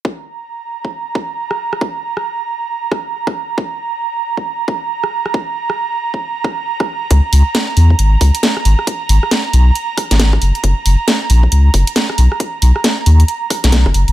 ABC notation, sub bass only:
X:1
M:4/4
L:1/16
Q:"Swing 16ths" 1/4=136
K:B
V:1 name="Sub bass" clef=bass
z16 | z16 | z16 | z16 |
C,, z C,, z3 E,, z G,,, z C,, z3 G,,, z | z2 G,,, z3 B,,, z4 G,,,3 F,,, z | F,,, z F,,, z3 A,,, z C,, z F,,, z3 B,,, z | z2 B,,, z3 D,, z4 B,,,2 F,,, F,,, F,,, |]